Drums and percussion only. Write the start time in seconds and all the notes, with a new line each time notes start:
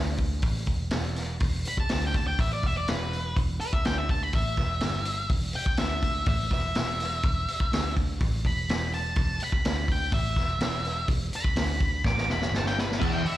0.17 kick, open hi-hat
0.42 kick, open hi-hat
0.66 kick, open hi-hat
0.91 snare, open hi-hat
1.16 snare, open hi-hat
1.40 kick, open hi-hat
1.65 open hi-hat
1.77 kick
1.89 snare, open hi-hat
2.14 kick, open hi-hat
2.39 kick, open hi-hat
2.63 kick, open hi-hat
2.88 snare, open hi-hat
3.13 open hi-hat
3.36 kick, open hi-hat
3.61 open hi-hat
3.73 kick
3.85 snare, open hi-hat
4.09 kick, open hi-hat
4.33 kick, open hi-hat
4.57 kick, snare, open hi-hat
4.80 snare, open hi-hat
5.05 open hi-hat
5.29 kick, open hi-hat
5.53 open hi-hat
5.66 kick
5.77 snare, open hi-hat
6.02 kick, open hi-hat
6.26 kick, open hi-hat
6.51 kick, snare, open hi-hat
6.75 snare, open hi-hat
7.00 snare, open hi-hat
7.23 kick, open hi-hat
7.48 open hi-hat
7.60 kick
7.73 snare, open hi-hat
7.97 kick, open hi-hat
8.21 kick, open hi-hat
8.45 kick, open hi-hat
8.69 snare, open hi-hat
8.93 open hi-hat
9.16 kick, open hi-hat
9.40 open hi-hat
9.52 kick
9.65 snare, open hi-hat
9.88 kick, open hi-hat
10.12 kick, open hi-hat
10.36 kick, snare, open hi-hat
10.61 snare, open hi-hat
10.85 snare, open hi-hat
11.08 kick, open hi-hat
11.33 open hi-hat
11.44 kick
11.56 snare, open hi-hat
11.81 kick, open hi-hat
12.04 kick, snare
12.18 snare
12.30 snare
12.42 snare
12.54 snare
12.66 snare
12.78 snare
12.92 snare
13.02 kick, crash
13.26 open hi-hat